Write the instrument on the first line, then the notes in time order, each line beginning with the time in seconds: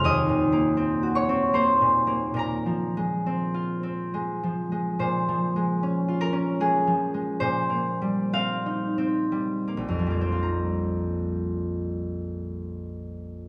harp
Already playing: C4 D#4 C5 C6
0.04 D#2 D#5 D#6
0.29 A#2
0.52 A#3
0.77 C4
1.03 F#4
1.15 C#5 C#6
1.29 C4
1.53 A#3 C5 C6
1.81 A#2
2.07 A#3
2.34 A#2 A#4
2.39 A#5
2.66 F3
2.97 G#3
3.26 C4
3.54 F4
3.83 C4
4.14 G#3
4.43 F3
4.72 G#3
4.99 A#2 C5
5.29 F3
5.56 G#3
5.83 C#4
6.08 F4
6.21 A#4
6.33 C#4
6.60 G#3 G#4
6.87 F3
7.14 G#3
7.40 A#2 C5
7.70 A#3
8.02 G3
8.33 C4 F5
8.66 D#4
8.98 C4
9.32 G3
9.68 A#3
9.77 A#1
9.88 F2
9.99 F3
10.07 G3 A#3
10.21 C4
10.32 F4
10.43 A#5